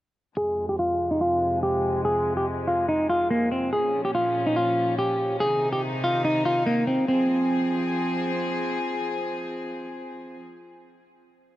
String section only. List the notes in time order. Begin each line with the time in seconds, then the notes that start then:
0.37 F2 C3 G#3
3.73 A#2 F3 C#4
5.40 C3 D#3 D#4
7.08 F3 C4 G#4